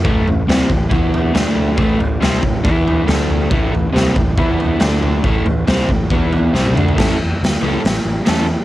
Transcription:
<<
  \new Staff \with { instrumentName = "Overdriven electric guitar" } { \clef bass \time 4/4 \key e \dorian \tempo 4 = 138 <a, e a>8 <a, e>8 <c g c'>8 <a, e>8 <e b e'>4 <d a d'>4 | <a, e a>8 <a, e>8 <c g c'>8 <a, e>8 <e b e'>4 <d a d'>4 | <a, e a>8 <a, e>8 <c g c'>8 <a, e>8 <e b e'>4 <d a d'>4 | <a, e a>8 <a, e>8 <c g c'>8 <a, e>8 <e b e'>4 <c g c'>8 <d a d'>8 |
<a, e a cis' e' a'>8 r4 <a, e a cis' e' a'>8 r4 <a, e a cis' e' a'>8 r8 | }
  \new Staff \with { instrumentName = "Fingered electric bass" } { \clef bass \time 4/4 \key e \dorian a,,8 a,,8 c,8 a,,8 e,4 d,4 | a,,8 a,,8 c,8 a,,8 e,4 d,4 | a,,8 a,,8 c,8 a,,8 e,4 d,4 | a,,8 a,,8 c,8 a,,8 e,4 c,8 d,8 |
a,,8 e,8 d,8 cis,8 a,,8 a,,8 e,4 | }
  \new DrumStaff \with { instrumentName = "Drums" } \drummode { \time 4/4 <bd tomfh>8 tomfh8 <sn tomfh>8 <bd tomfh>8 <bd tomfh>8 tomfh8 <sn tomfh>8 tomfh8 | <bd tomfh>8 tomfh8 <sn tomfh>8 <bd tomfh>8 <bd tomfh>8 tomfh8 <sn tomfh>8 tomfh8 | <bd tomfh>8 tomfh8 <sn tomfh>8 <bd tomfh>8 <bd tomfh>8 tomfh8 <sn tomfh>8 tomfh8 | <bd tomfh>8 tomfh8 <sn tomfh>8 <bd tomfh>8 <bd tomfh>8 tomfh8 sn16 tommh16 toml16 tomfh16 |
<cymc bd sn>4 <hho sn>4 <hho sn>4 <hho sn>4 | }
>>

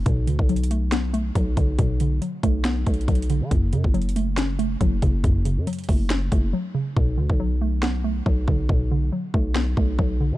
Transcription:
<<
  \new Staff \with { instrumentName = "Synth pluck" } { \clef bass \time 4/4 \key b \dorian \tempo 4 = 139 b,8 d8 fis8 a8 b8 a8 fis8 d8 | b,8 d8 fis8 a8 b8 a8 fis8 d8 | fis,8 cis8 fis8 a8 cis'8 a8 fis8 cis8 | fis,8 cis8 fis8 a8 cis'8 a8 fis8 cis8 |
b,8 d8 fis8 a8 b8 a8 fis8 d8 | b,8 d8 fis8 a8 b8 a8 fis8 d8 | }
  \new Staff \with { instrumentName = "808-style bass" } { \clef bass \time 4/4 \key b \dorian b,,8 d,16 b,,2~ b,,16 b,,8 b,,8 | b,,4 r8 b,,4 b,,8 b,,8. d16 | fis,,8 fis,16 fis,,2~ fis,,16 fis,,8 fis,,8 | fis,,8. fis,16 r8 fis,,4 fis,,8 r4 |
b,,8 d,16 b,,2~ b,,16 b,,8 b,,8 | b,,4 r8 b,,4 b,,8 b,,8. d16 | }
  \new DrumStaff \with { instrumentName = "Drums" } \drummode { \time 4/4 <hh bd>8 hh16 bd16 \tuplet 3/2 { hh16 hh16 hh16 hh16 r16 r16 } <hh sn>8 hh8 <hh bd>8 <hh bd>8 | <hh bd>8 hh8 hh8 <hh bd>8 \tuplet 3/2 { <hh sn>16 r16 r16 <hh bd>16 hh16 hh16 <hh bd>16 hh16 hh16 hh16 r16 r16 } | <hh bd>8 hh16 bd16 \tuplet 3/2 { hh16 hh16 hh16 hh16 r16 r16 } <hh sn>8 hh8 <hh bd>8 <hh bd>8 | <hh bd>8 hh8 hh32 hh32 hh32 hh32 <hho bd>8 <hh sn>8 <hh bd>8 r4 |
bd8. bd16 r4 sn4 bd8 bd8 | bd4 r8 bd8 sn8 bd8 bd4 | }
>>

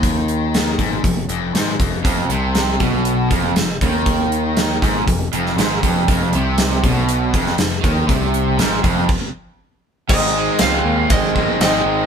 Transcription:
<<
  \new Staff \with { instrumentName = "Lead electric guitar" } { \time 4/4 \key f \minor \tempo 4 = 119 r1 | r1 | r1 | r1 |
r1 | ees''4 f''4 ees''4 ees''4 | }
  \new Staff \with { instrumentName = "Twelve-string acoustic guitar" } { \time 4/4 \key f \minor r1 | r1 | r1 | r1 |
r1 | <aes, ees aes c' ees' aes'>4 <aes c' ees' aes'>4. <aes c' ees' aes'>8 <aes c' ees' aes'>8 <aes c' ees' aes'>8 | }
  \new Staff \with { instrumentName = "Overdriven electric guitar" } { \clef bass \time 4/4 \key f \minor r1 | f,8 c4 b,4 f,8 f,8 ees8~ | ees4. aes,8 f,8 f,8 aes,8 f,8 | f,8 c4 b,4 f,8 f,8 ees8 |
c4 aes,8 f,8 r2 | aes,8 aes8 c'8 ees8 aes8 ees8 c'8 ees8 | }
  \new Staff \with { instrumentName = "Distorted electric guitar" } { \clef bass \time 4/4 \key f \minor ees4. aes,8 f,8 f,8 aes,8 f,8 | f,8 c4 b,4 f,8 f,8 ees8~ | ees4. aes,8 f,8 f,8 aes,8 f,8 | f,8 c4 b,4 f,8 f,8 ees8 |
c4 aes,8 f,8 r2 | <aes, ees aes>2~ <aes, ees aes>8 <aes, ees aes>8 <aes, ees aes>4 | }
  \new Staff \with { instrumentName = "Picked electric bass" } { \clef bass \time 4/4 \key f \minor ees,4. aes,,8 f,,8 f,,8 aes,,8 f,,8 | f,,8 c,4 b,,4 r8 f,,8 ees,8~ | ees,4. aes,,8 f,,8 f,,8 aes,,8 f,,8 | f,,8 c,4 b,,4 f,,8 f,,8 ees,8 |
c,4 aes,,8 f,,8 r2 | aes,,4 des,8 ees,8 aes,,4 aes,,8 aes,,8 | }
  \new DrumStaff \with { instrumentName = "Drums" } \drummode { \time 4/4 <hh bd>8 hh8 <hh sn>8 <hh bd>8 <hh bd>8 hh8 <hh sn>8 <hh bd>8 | <hh bd>8 hh8 <hh sn>8 <hh bd>8 hh8 <hh bd>8 <hh sn>8 <hh bd>8 | <hh bd>8 hh8 <hh sn>8 <hh bd sn>8 <hh bd>8 hh16 sn16 <hh sn>8 <hh bd>8 | <hh bd>8 hh8 <hh sn>8 <hh bd>8 hh8 <hh bd>16 sn16 <hh sn>8 <hh bd>8 |
<hh bd>8 hh8 <hh sn>8 <hh bd>8 <cymc bd>4 r4 | <cymc bd>4 <rb sn>4 <bd rb>8 bd8 <rb sn>4 | }
>>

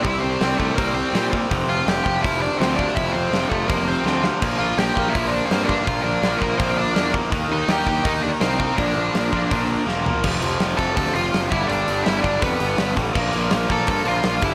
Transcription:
<<
  \new Staff \with { instrumentName = "Lead electric guitar" } { \time 4/4 \key bes \lydian \tempo 4 = 165 <e' e''>8 <c' c''>4 <a a'>8 <bes bes'>8 <c' c''>4 r8 | r8 <f' f''>8 <g' g''>8 <g' g''>8 <e' e''>8 <d' d''>8 <c' c''>8 <d' d''>8 | <e' e''>8 <c' c''>4 <a a'>8 <bes bes'>8 <c' c''>4 r8 | r8 <f' f''>8 <g' g''>8 <g' g''>8 <e' e''>8 <d' d''>8 <c' c''>8 <d' d''>8 |
<f' f''>8 <d' d''>4 <bes bes'>8 <c' c''>8 <d' d''>4 r8 | r8 <ees' ees''>8 <g' g''>8 <g' g''>8 <ees' ees''>8 <d' d''>8 <c' c''>4 | <d' d''>2. r4 | r4. <a' a''>8 <a' a''>8 <f' f''>4 <e' e''>8 |
<d' d''>4 <e' e''>8 <d' d''>8 <b b'>4. r8 | r4. <a' a''>8 <a' a''>8 <f' f''>4 <e' e''>8 | }
  \new Staff \with { instrumentName = "Distorted electric guitar" } { \clef bass \time 4/4 \key bes \lydian <c g c'>4 <c g c'>8 <c g c'>8 <c g c'>4 <c g c'>8 <c g c'>8 | <f, c f>4 <f, c f>8 <f, c f>8 <f, c f>4 <f, c f>8 <f, c f>8 | <f, c f>4 <f, c f>8 <f, c f>8 <f, c f>4 <f, c f>8 <f, c f>8 | <bes, f bes>4 <bes, f bes>8 <bes, f bes>8 <bes, f bes>4 <bes, f bes>8 <bes, f bes>8 |
<bes, f bes>4 <bes, f bes>8 <bes, f bes>8 <bes, f bes>4 <bes, f bes>8 <bes, f bes>8 | <ees bes ees'>4 <ees bes ees'>8 <ees bes ees'>8 <ees bes ees'>4 <ees bes ees'>8 <ees bes ees'>8 | <bes, f bes>4 <bes, f bes>8 <bes, f bes>8 <bes, f bes>4 <bes, f bes>8 <bes, f bes>8 | <f, c f>8 <f, c f>8 <f, c f>8 <f, c f>8 <f, c f>8 <f, c f>8 <f, c f>8 <g, d g>8 |
<g, d g>8 <g, d g>8 <g, d g>8 <g, d g>8 <g, d g>8 <g, d g>8 <g, d g>8 <g, d g>8 | <bes, f bes>8 <bes, f bes>8 <bes, f bes>8 <bes, f bes>8 <bes, f bes>8 <bes, f bes>8 <bes, f bes>8 <g, d g>8 | }
  \new Staff \with { instrumentName = "Overdriven electric guitar" } { \clef bass \time 4/4 \key bes \lydian <c g c'>4 <c g c'>8 <c g c'>8 <c g c'>4 <c g c'>8 <c g c'>8 | <f, c f>4 <f, c f>8 <f, c f>8 <f, c f>4 <f, c f>8 <f, c f>8 | <f, c f>4 <f, c f>8 <f, c f>8 <f, c f>4 <f, c f>8 <f, c f>8 | <bes, f bes>4 <bes, f bes>8 <bes, f bes>8 <bes, f bes>4 <bes, f bes>8 <bes, f bes>8 |
<bes, f bes>4 <bes, f bes>8 <bes, f bes>8 <bes, f bes>4 <bes, f bes>8 <bes, f bes>8 | <ees bes ees'>4 <ees bes ees'>8 <ees bes ees'>8 <ees bes ees'>4 <ees bes ees'>8 <ees bes ees'>8 | <bes, f bes>4 <bes, f bes>8 <bes, f bes>8 <bes, f bes>4 <bes, f bes>8 <bes, f bes>8 | <f, c f>8 <f, c f>8 <f, c f>8 <f, c f>8 <f, c f>8 <f, c f>8 <f, c f>8 <g, d g>8 |
<g, d g>8 <g, d g>8 <g, d g>8 <g, d g>8 <g, d g>8 <g, d g>8 <g, d g>8 <g, d g>8 | <bes, f bes>8 <bes, f bes>8 <bes, f bes>8 <bes, f bes>8 <bes, f bes>8 <bes, f bes>8 <bes, f bes>8 <g, d g>8 | }
  \new Staff \with { instrumentName = "Picked electric bass" } { \clef bass \time 4/4 \key bes \lydian c,8 c,8 c,8 c,8 c,4 bes,4 | f,,8 f,,8 f,,8 f,,8 f,,4 d,4 | f,,8 f,,8 f,,8 f,,8 f,,4 d,4 | bes,,8 bes,,8 bes,,8 bes,,8 bes,,4 g,4 |
bes,,8 bes,,8 bes,,8 bes,,8 bes,,4 e,4 | ees,8 ees,8 ees,8 ees,8 ees,4 c,4 | bes,,8 bes,,8 bes,,8 bes,,8 bes,,4 e,,4 | f,,8 f,,8 f,,8 f,,8 d,8 f,,8 fis,,8 g,,8 |
g,,8 g,,8 g,,8 g,,8 f,8 g,,8 g,,8 a,,8 | bes,,8 bes,,8 bes,,8 bes,,8 g,8 bes,,8 bes,,8 g,,8 | }
  \new DrumStaff \with { instrumentName = "Drums" } \drummode { \time 4/4 <hho bd>4 <hho sn>8 bd8 <hho bd>4 <hho sn>8 bd8 | <hho bd>4 <hho sn>8 bd8 <hho bd>4 <hho sn>8 bd8 | <hho bd>4 <hho sn>8 bd8 <hho bd>4 sn8 sn8 | <cymc hho bd>4 <hho sn>8 bd8 <hho bd>4 <hho sn>8 bd8 |
<hho bd>4 <hho sn>8 bd8 <hho bd>4 <hho sn>8 bd8 | <hho bd>4 <hho sn>8 bd8 <hho bd>4 <hho sn>8 bd8 | <hho bd>4 <hho sn>8 bd8 <hho bd>4 sn8 tomfh8 | <cymc bd>8 hho8 <hho sn>8 <hho bd>8 <hho bd>8 hho8 <hho sn>8 <hho bd>8 |
hho8 hho8 <hho sn>8 <hho bd>8 <hho bd>8 hho8 <hho sn>8 <hho bd>8 | <cymc bd>8 hho8 <hho sn>8 <hho bd>8 <hho bd>8 hho8 <hho sn>8 <hho bd>8 | }
>>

